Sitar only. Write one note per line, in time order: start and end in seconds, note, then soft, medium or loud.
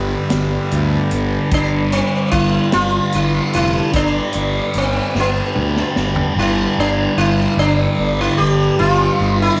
0.00 1.08 D4 medium
1.54 1.93 D4 medium
1.93 2.30 C4 medium
2.31 2.69 E4 medium
2.73 3.15 F4 loud
3.15 3.53 E4 medium
3.55 3.92 E4 medium
3.96 4.72 D4 medium
4.78 5.18 C4 medium
5.20 6.05 B3 medium
6.39 6.79 E4 medium
6.80 7.18 D4 medium
7.18 7.55 E4 medium
7.59 8.20 D4 medium
8.21 8.39 E4 medium
8.38 8.79 G4 medium
8.79 9.42 F4 medium
9.42 9.60 E4 medium